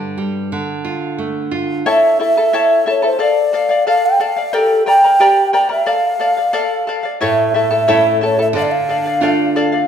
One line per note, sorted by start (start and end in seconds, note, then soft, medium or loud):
0.00 0.48 G2 medium
0.00 0.16 D3 soft
0.18 0.51 G3 soft
0.52 1.83 D3 medium
0.85 1.18 F4 soft
1.18 1.51 A3 soft
1.51 1.85 F4 soft
1.86 2.19 E4 medium
1.86 2.19 A4 medium
1.86 2.20 C#5 medium
1.86 2.18 E5 medium
1.86 2.19 E5 medium
1.86 2.20 A5 medium
2.20 2.37 E4 medium
2.20 2.37 A4 medium
2.20 2.37 E5 soft
2.20 2.84 E5 medium
2.20 2.36 A5 medium
2.37 2.53 E4 soft
2.37 2.53 A4 soft
2.37 2.53 A5 soft
2.53 2.85 E4 medium
2.53 2.86 A4 medium
2.53 2.87 C#5 medium
2.53 2.85 E5 medium
2.53 2.86 A5 medium
2.86 3.03 E4 medium
2.86 3.02 A4 medium
2.86 3.03 E5 medium
2.86 3.01 A5 medium
2.90 3.04 C#5 medium
3.02 3.18 E4 soft
3.02 3.18 A4 soft
3.02 3.21 C5 medium
3.02 3.20 A5 medium
3.19 3.52 A4 medium
3.19 3.52 D5 medium
3.19 3.84 D5 medium
3.19 3.53 F5 medium
3.53 3.70 A4 medium
3.53 3.69 D5 medium
3.53 3.68 F5 medium
3.69 3.86 D5 soft
3.69 3.86 F5 medium
3.87 4.19 A4 medium
3.87 4.19 D5 medium
3.87 4.19 F5 medium
3.87 4.07 F5 medium
4.06 4.23 G5 medium
4.20 4.37 A4 medium
4.20 4.37 D5 medium
4.20 4.35 F5 medium
4.20 4.55 F5 medium
4.36 4.53 D5 soft
4.36 4.53 F5 medium
4.53 4.87 G4 medium
4.53 4.87 A4 loud
4.53 4.85 A#4 medium
4.53 4.86 D5 medium
4.53 4.85 G5 medium
4.86 5.04 A#4 medium
4.86 5.04 D5 medium
4.86 5.04 G5 medium
4.86 5.51 G5 medium
4.86 5.03 A#5 medium
5.04 5.19 A#4 soft
5.04 5.19 D5 soft
5.04 5.20 A#5 soft
5.20 5.54 G4 medium
5.20 5.52 A#4 medium
5.20 5.53 D5 medium
5.20 5.52 G5 medium
5.20 5.53 A#5 medium
5.53 5.70 A#4 medium
5.53 5.69 D5 medium
5.53 5.71 G5 medium
5.53 5.70 G5 medium
5.53 5.68 A#5 medium
5.69 5.86 A#4 soft
5.69 5.85 D5 soft
5.69 5.87 E5 medium
5.69 5.87 A#5 medium
5.86 6.18 A4 medium
5.86 6.19 D5 medium
5.86 6.20 F5 medium
5.86 6.85 F5 medium
6.19 6.37 A4 medium
6.19 6.37 D5 medium
6.19 6.36 F5 medium
6.37 6.52 D5 soft
6.37 6.53 F5 soft
6.53 6.86 A4 medium
6.53 6.88 D5 medium
6.53 6.88 F5 medium
6.87 7.04 A4 medium
6.87 7.04 D5 medium
6.87 7.02 F5 medium
7.03 7.20 D5 soft
7.03 7.21 F5 soft
7.21 8.51 A2 medium
7.21 7.54 E4 medium
7.21 7.54 A4 medium
7.21 7.55 C#5 medium
7.21 7.53 E5 medium
7.21 7.54 E5 medium
7.21 7.54 A5 medium
7.54 7.71 E4 medium
7.54 7.70 A4 medium
7.54 7.71 E5 medium
7.54 8.19 E5 medium
7.54 7.69 A5 medium
7.71 7.87 E4 soft
7.71 7.87 A4 soft
7.71 7.87 A5 medium
7.88 8.53 A3 soft
7.88 8.53 C#4 soft
7.88 8.21 E4 medium
7.88 8.53 E4 soft
7.88 8.21 A4 medium
7.88 8.21 C#5 medium
7.88 8.20 E5 medium
7.88 8.22 A5 medium
8.21 8.39 E4 medium
8.21 8.38 A4 medium
8.21 8.39 C#5 medium
8.21 8.38 E5 medium
8.21 8.37 A5 medium
8.39 8.55 E4 soft
8.39 8.54 A4 medium
8.39 8.48 E5 medium
8.39 8.55 A5 medium
8.53 9.83 D3 medium
8.53 8.88 A4 medium
8.53 8.88 D5 medium
8.53 8.89 F5 medium
8.58 8.64 F5 medium
8.62 8.73 D5 medium
8.72 9.56 F5 loud
8.89 9.05 A4 medium
8.89 9.06 D5 medium
8.89 9.04 F5 medium
9.05 9.21 D5 soft
9.05 9.22 F5 medium
9.21 9.86 A3 soft
9.21 9.86 D4 soft
9.21 9.86 F4 medium
9.21 9.55 A4 medium
9.21 9.55 D5 medium
9.21 9.56 F5 medium
9.56 9.72 A4 medium
9.56 9.72 D5 medium
9.56 9.71 F5 medium
9.72 9.88 D5 soft
9.72 9.88 F5 medium